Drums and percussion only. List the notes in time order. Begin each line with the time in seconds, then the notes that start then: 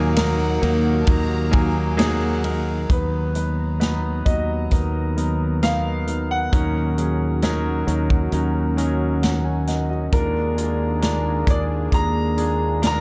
0.16 snare, ride
0.63 ride
1.07 kick, ride
1.53 kick, ride
1.99 snare, ride
2.44 ride
2.90 kick, closed hi-hat
3.35 closed hi-hat
3.81 snare, closed hi-hat
4.26 kick, closed hi-hat
4.71 kick, closed hi-hat
5.18 closed hi-hat
5.63 snare, closed hi-hat
6.07 closed hi-hat
6.53 kick, closed hi-hat
6.98 closed hi-hat
7.42 snare, closed hi-hat
7.88 closed hi-hat
8.10 kick
8.32 closed hi-hat
8.78 closed hi-hat
9.23 snare, closed hi-hat
9.67 snare, closed hi-hat
10.13 kick, closed hi-hat
10.58 closed hi-hat
11.02 snare, closed hi-hat
11.47 kick, closed hi-hat
11.92 kick, closed hi-hat
12.38 closed hi-hat
12.83 snare, closed hi-hat